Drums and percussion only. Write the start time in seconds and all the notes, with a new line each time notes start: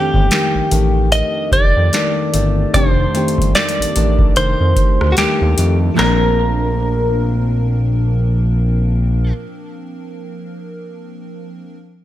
0.14 kick
0.31 snare, closed hi-hat
0.71 closed hi-hat
1.12 closed hi-hat
1.52 kick, closed hi-hat
1.93 snare, closed hi-hat
2.34 closed hi-hat
2.74 kick, closed hi-hat
3.15 closed hi-hat
3.28 closed hi-hat
3.38 kick, closed hi-hat
3.55 snare, closed hi-hat
3.69 closed hi-hat
3.82 closed hi-hat
3.96 closed hi-hat
4.19 kick
4.36 closed hi-hat
4.76 kick, closed hi-hat
5.01 cross-stick
5.17 snare, closed hi-hat
5.58 closed hi-hat
5.98 snare, clap